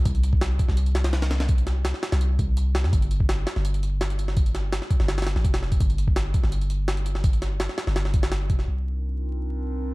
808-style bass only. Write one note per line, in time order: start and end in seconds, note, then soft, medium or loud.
0.06 0.58 C2 loud
0.69 1.93 C2 loud
2.12 2.38 C2 medium
2.39 2.86 C2 medium
2.84 2.92 F2 loud
2.93 3.45 G1 loud
3.56 4.81 G1 medium
5.00 5.35 G1 medium
5.36 5.44 A1 loud
5.44 5.79 F1 medium
5.80 6.33 G1 loud
6.44 7.68 G1 medium
7.87 8.51 G1 medium
8.50 8.66 F1 loud
8.68 9.94 C2 medium